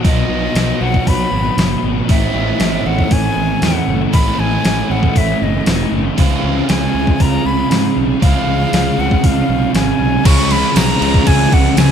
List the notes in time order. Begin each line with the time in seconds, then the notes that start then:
Already playing: B3 D#4 F#4 C#5
0.03 B1 B2 F#3 B3 D#4 F#4 D#5, kick, open hi-hat
0.28 B1 F#3 B3
0.54 B1 B2 F#3 B3, snare, open hi-hat
0.80 B1 F#3 B3 F#5
0.94 kick
1.07 B1 B5, kick, open hi-hat
1.31 G#1
1.57 F#1 B2 F#3 B3, snare, open hi-hat
1.83 G#1 F#3 B3
2.08 A1 A2 E3 A3 C#4 E4 A4 E5, kick, open hi-hat
2.34 A1 E3 A3
2.60 A1 A2 E3 A3, snare, open hi-hat
2.85 A1 E3 A3 F#5
2.99 kick
3.11 A1 G#5, kick, open hi-hat
3.36 A1
3.62 E2 A2 E3 A3 F#5, snare, open hi-hat
3.87 F#1 E3 A3
4.12 A1 A2 E3 A3 C#4 E4 B5, kick, open hi-hat
4.38 A1 E3 A3 G#5
4.63 A1 A2 E3 A3, snare, open hi-hat
4.89 A1 E3 A3 F#5
5.03 kick
5.16 A1 E5, kick, open hi-hat
5.42 F#1 D#5
5.66 E1 A2 E3 A3, snare, open hi-hat
5.92 F#1 E3 A3
6.17 C#2 C#3 F3 G#3 C#4 F4 G#4 F5, kick, open hi-hat
6.43 C#2 G#3 C#4
6.68 C#2 C#3 G#3 C#4 G#5, snare, open hi-hat
6.94 C#2 G#3 C#4
7.07 kick
7.20 C#2 A#5, kick, open hi-hat
7.45 C#2 B5
7.70 G#2 C#3 G#3 C#4, snare, open hi-hat
7.96 B1 G#3 C#4
8.21 C#2 C#3 F3 G#3 C#4 F4 F5, kick, open hi-hat
8.47 C#2 G#3 C#4
8.72 C#2 C#3 G#3 C#4, snare, open hi-hat
8.98 C#2 G#3 C#4 F#5
9.11 kick
9.24 C#2 F5, kick, open hi-hat
9.49 B1
9.73 G#1 C#3 G#3 C#4 G#5, snare, open hi-hat
9.99 B1 G#3 C#4
10.24 C#2 C#3 F3 G#3 C#4 F4 G#4 B4 F5 C#6, kick, crash
10.51 B5, snare, crash
10.75 B1 A#5, snare, tambourine, crash
10.99 C#2 C#3 F3 G#3 C#4 F4 B4, crash
11.14 kick
11.25 C#2 C#3 G#3 C#4 G#5, kick, crash
11.52 C#2 F#5, kick, crash
11.76 C#2 C#3 G#3 C#4 G#5, snare, tambourine, crash